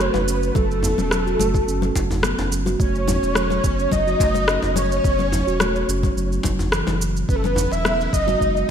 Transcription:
0.00 steel tongue drum A3, soft synth lead B4, shaker
0.14 sub bass F#1, djembe tone, low conga, shaker
0.27 steel tongue drum C#4, shaker
0.43 shaker
0.54 sub bass F#1, steel tongue drum F#3, soft synth lead A4, kick, low conga, shaker
0.71 shaker
0.83 steel tongue drum B3, djembe bass, shaker
0.98 sub bass E1, steel tongue drum C#4, low conga, shaker
1.11 steel tongue drum F#3, cross-stick, shaker
1.26 steel tongue drum F#4, shaker
1.39 sub bass F#1, steel tongue drum A3, low conga, shaker
1.54 kick, djembe tone, shaker
1.68 sub bass F#1, steel tongue drum C#4, shaker
1.82 low conga, shaker
1.95 sub bass F#1, steel tongue drum F#3, kick, djembe slap, djembe tone, shaker
2.11 djembe bass, shaker
2.23 steel tongue drum B3, cross-stick, low conga, shaker
2.38 sub bass F#1, steel tongue drum C#4, djembe slap, djembe tone, shaker
2.51 steel tongue drum F#3, shaker
2.66 steel tongue drum F#4, low conga, shaker
2.79 sub bass F#1, steel tongue drum A3, soft synth lead C#5, kick, shaker
2.95 shaker
3.07 steel tongue drum C#4, low conga, djembe bass, shaker
3.23 sub bass E1, djembe slap, shaker
3.35 steel tongue drum F#3, cross-stick, shaker
3.50 low conga, shaker
3.64 sub bass F#1, steel tongue drum B3, kick, shaker
3.79 steel tongue drum C#4, shaker
3.92 sub bass F#1, steel tongue drum F#3, soft synth lead D#5, kick, low conga, shaker
4.07 steel tongue drum F#4, shaker
4.20 sub bass F#1, steel tongue drum A3, kick, djembe slap, shaker
4.34 low conga, shaker
4.48 steel tongue drum C#4, cross-stick, shaker
4.62 sub bass F#1, djembe tone, shaker
4.76 steel tongue drum F#3, soft synth lead C#5, low conga, shaker
4.92 shaker
5.04 sub bass F#1, steel tongue drum B3, kick, shaker
5.19 steel tongue drum C#4, low conga, shaker
5.32 steel tongue drum F#3, djembe bass, shaker
5.47 sub bass E1, steel tongue drum F#4, shaker
5.60 steel tongue drum A3, cross-stick, low conga, shaker
5.76 shaker
5.88 sub bass F#1, steel tongue drum C#4, shaker
6.03 kick, djembe tone, low conga, shaker
6.16 sub bass F#1, steel tongue drum F#3, shaker
6.32 shaker
6.43 sub bass F#1, steel tongue drum F#3, kick, djembe slap, djembe tone, low conga, shaker
6.59 djembe bass, shaker
6.72 steel tongue drum E3, cross-stick, shaker
6.87 sub bass F#1, steel tongue drum E3, djembe slap, djembe tone, low conga, shaker
7.01 steel tongue drum F#3, shaker
7.17 shaker
7.29 sub bass F#1, steel tongue drum C#4, soft synth lead B4, kick, shaker
7.35 soft synth lead A4
7.44 soft synth lead B4, low conga, shaker
7.56 steel tongue drum F#3, djembe bass, shaker
7.71 sub bass E1, soft synth lead E5, djembe slap, shaker
7.85 steel tongue drum B3, cross-stick, low conga, shaker
7.99 steel tongue drum C#4, shaker
8.12 sub bass F#1, steel tongue drum F#3, soft synth lead D#5, kick, shaker
8.27 steel tongue drum F#4, low conga, shaker
8.40 sub bass F#1, steel tongue drum G#3, kick, shaker
8.57 shaker

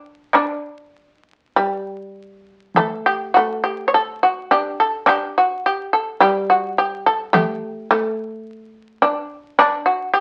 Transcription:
Already playing: shamisen D4
0.33 shamisen D4, taiko rim
1.18 shamisen D#4
1.41 shamisen D4
1.56 shamisen G3
1.66 shamisen D#4
1.89 shamisen D4
2.76 shamisen A3 A4, taiko high
3.06 shamisen G4
3.34 shamisen A3 F#4
3.64 shamisen G4
3.88 shamisen C#5
3.94 shamisen A4
4.23 shamisen F#4
4.51 shamisen D4 G4
4.80 shamisen A4
5.06 shamisen D4 G4, taiko rim
5.38 shamisen F#4
5.66 shamisen G4
5.93 shamisen A4
6.20 shamisen G3 G4
6.50 shamisen F#4
6.78 shamisen G4
7.06 shamisen A4
7.33 shamisen A3 G4, taiko high
7.91 shamisen A3
9.02 shamisen D4
9.59 shamisen D4, taiko rim
9.86 shamisen F#4
10.14 shamisen G4

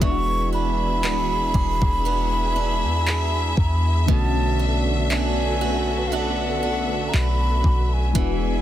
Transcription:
Already playing: steel-string acoustic guitar A3 D4 F#4, string section B3
0.00 808-style bass E1, synth keys E3 G#3 B3 D4, steel-string acoustic guitar E3, string section E4 G#4 E5, flute C#6, kick
0.05 synth keys E4
0.11 synth keys F#4
0.53 steel-string acoustic guitar D4, flute B5
1.03 808-style bass D1, steel-string acoustic guitar B3 D4 G#4, clap
1.31 808-style bass E1
1.54 808-style bass E1, steel-string acoustic guitar G#4, kick
1.82 808-style bass E1, kick
2.05 steel-string acoustic guitar B3 D4 G#4
2.56 steel-string acoustic guitar D4
2.84 808-style bass E2
3.07 steel-string acoustic guitar G#4, clap
3.57 808-style bass E2, flute B5, kick
4.06 808-style bass B1, steel-string acoustic guitar B2, synth keys D3 A3 B3 C#4, string section B3 F#4 A4, flute A5, kick
4.11 synth keys F#4
4.59 steel-string acoustic guitar D4
5.10 steel-string acoustic guitar A3 D4 F#4, flute G#5, clap
5.61 steel-string acoustic guitar F#4
6.07 flute F5
6.12 steel-string acoustic guitar A3 D4 F#4, flute F#5
6.63 steel-string acoustic guitar D4
7.09 flute A#5
7.14 808-style bass B1, steel-string acoustic guitar F#4, flute B5, clap
7.64 808-style bass B1, kick
7.93 flute G#5
8.13 808-style bass E1, synth keys E3 G#3 B3 D4, steel-string acoustic guitar E3, string section D4 G#4 B4 E5, kick, closed hi-hat
8.19 synth keys F#4

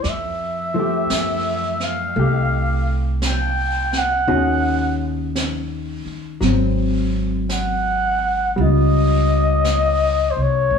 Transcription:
0.03 upright bass F2, muted trumpet D5, brush sweep, snare
0.09 muted trumpet E5
0.74 hollow-body jazz guitar F3 A3
0.79 hollow-body jazz guitar G4
1.10 upright bass F#2, brush sweep, snare, hi-hat pedal
1.80 muted trumpet F5, snare
2.15 upright bass C2, hollow-body jazz guitar A3, brush sweep
2.19 hollow-body jazz guitar G4
3.22 brush sweep, snare, hi-hat pedal
3.26 muted trumpet G5
3.93 snare
3.98 muted trumpet F#5
4.28 upright bass D#2, hollow-body jazz guitar D#3 C#4 F#4 G#4, brush sweep
5.36 brush sweep, snare, hi-hat pedal
6.05 muted upright bass stroke
6.41 upright bass G#1, hollow-body jazz guitar F#3 C4, brush sweep, snare
7.49 muted trumpet F#5, brush sweep, snare, hi-hat pedal
8.56 upright bass C#2, hollow-body jazz guitar G3, brush sweep
8.61 hollow-body jazz guitar F4, muted trumpet D#5
9.64 brush sweep, snare, hi-hat pedal
10.31 muted trumpet C5
10.37 upright bass C2
10.42 muted trumpet C#5
10.70 upright bass G#1, brush sweep

